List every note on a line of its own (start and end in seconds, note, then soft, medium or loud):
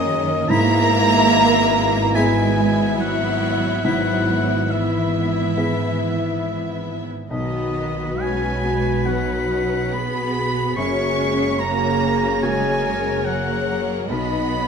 0.00 0.46 F#2 medium
0.00 0.46 D#3 medium
0.00 0.46 A#3 medium
0.00 0.46 C#4 medium
0.00 0.46 F#4 medium
0.00 0.46 A#4 medium
0.00 0.46 C#5 medium
0.00 0.46 D#5 loud
0.00 0.51 D#5 loud
0.06 0.28 G#3 medium
0.29 0.50 A#3 medium
0.49 3.81 G#1 medium
0.49 3.81 G#2 medium
0.49 3.66 B2 medium
0.49 2.11 G#3 medium
0.49 2.12 A#3 loud
0.49 3.66 E4 medium
0.49 0.80 E4 medium
0.49 2.11 E4 medium
0.49 2.11 E5 medium
0.49 2.11 A#5 loud
0.49 2.17 A#5 loud
0.49 0.89 B6 medium
2.14 2.99 G#3 medium
2.14 4.66 B3 medium
2.14 3.81 B3 soft
2.14 2.45 E4 medium
2.14 4.66 E4 medium
2.14 3.81 E4 soft
2.14 3.81 G#4 medium
2.14 4.67 E5 medium
2.14 2.97 G#5 medium
2.14 2.99 G#5 medium
2.14 2.54 B6 medium
2.98 3.84 F#3 medium
2.98 3.82 F#5 medium
2.98 3.84 F#5 medium
3.83 7.06 G#1 medium
3.83 7.27 G#2 medium
3.83 4.69 F#3 medium
3.83 6.93 B3 medium
3.83 6.93 E4 medium
3.83 4.17 E4 medium
3.83 4.68 F#5 medium
3.83 4.73 F#5 medium
3.83 4.25 B6 medium
4.69 6.87 E3 medium
4.69 7.07 B3 medium
4.69 7.07 E4 medium
4.69 6.87 E5 medium
4.69 7.06 E5 medium
4.69 6.88 E5 medium
5.57 7.27 B3 soft
5.57 5.89 E4 medium
5.57 7.27 E4 soft
5.57 7.27 G#4 soft
5.57 5.97 B6 medium
7.30 10.73 B1 medium
7.30 10.73 B1 soft
7.30 8.17 D#3 medium
7.30 8.17 B3 medium
7.30 10.74 B3 medium
7.30 9.02 F#4 medium
7.30 10.74 F#4 medium
7.30 10.74 B4 medium
7.30 8.16 D#5 medium
7.30 8.23 D#5 medium
7.30 11.61 B6 soft
8.20 9.07 G#3 medium
8.20 8.63 C#4 medium
8.20 9.06 G#5 medium
8.20 9.08 G#5 medium
8.64 9.07 B3 medium
9.06 9.93 F#3 medium
9.06 10.73 B3 soft
9.06 9.50 B3 medium
9.06 9.94 D#4 medium
9.06 10.74 F#4 soft
9.06 9.93 F#5 medium
9.06 9.95 F#5 medium
9.50 9.92 C#4 medium
9.93 10.77 B3 medium
9.93 10.78 B3 medium
9.93 10.78 G#4 medium
9.93 10.76 B5 medium
9.93 10.78 B5 medium
10.76 14.10 F#1 medium
10.76 14.06 F#2 medium
10.76 14.05 A#3 medium
10.76 11.18 A#3 medium
10.76 11.59 C#4 medium
10.76 11.59 F#4 medium
10.76 14.05 G#4 medium
10.76 13.78 G#4 medium
10.76 12.39 C#5 medium
10.76 11.61 C#6 loud
10.76 11.58 C#6 medium
11.19 11.59 G#3 medium
11.60 12.42 A#3 medium
11.60 13.25 C#4 medium
11.60 12.41 F#4 medium
11.60 12.42 A#5 medium
11.60 13.82 A#6 medium
12.42 13.26 G#3 medium
12.42 14.06 A#3 soft
12.42 14.06 F#4 soft
12.42 12.84 G#4 medium
12.42 14.06 G#4 medium
12.42 14.06 C#5 medium
12.42 13.25 G#5 medium
12.42 13.27 G#5 medium
12.84 14.10 A#4 medium
13.24 14.08 F#3 medium
13.24 13.68 A#3 medium
13.24 14.09 F#5 medium
13.24 13.82 F#5 medium
13.69 14.10 A#3 medium
14.09 14.68 B1 medium
14.09 14.68 B2 medium
14.09 14.51 B3 medium
14.09 14.68 B3 medium
14.09 14.68 D#4 medium
14.09 14.68 F#4 medium
14.09 14.68 D#5 medium
14.09 14.68 B5 medium
14.09 14.68 B6 medium
14.51 14.68 F#3 medium